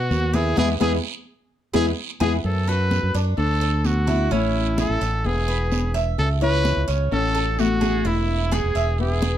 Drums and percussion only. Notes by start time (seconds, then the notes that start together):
0.11 high conga, short guiro
0.34 high conga, short guiro
0.58 high conga, long guiro
0.81 high conga, long guiro
1.74 high conga, long guiro
2.21 high conga, long guiro
2.44 high conga, long guiro
2.68 high conga
2.91 high conga, short guiro
3.15 high conga, short guiro
3.38 high conga, long guiro
3.62 high conga
3.85 high conga, short guiro
4.08 high conga, short guiro
4.31 high conga, long guiro
4.55 high conga
4.78 high conga, short guiro
5.01 short guiro
5.24 high conga, long guiro
5.48 high conga
5.72 high conga, short guiro
5.95 short guiro
6.18 high conga, long guiro
6.42 high conga
6.65 high conga, short guiro
6.89 high conga, short guiro
7.12 high conga, long guiro
7.36 high conga
7.59 high conga, short guiro
7.82 high conga, short guiro
8.05 high conga, long guiro
8.29 high conga
8.52 high conga, short guiro
8.75 short guiro
8.98 high conga, long guiro
9.22 high conga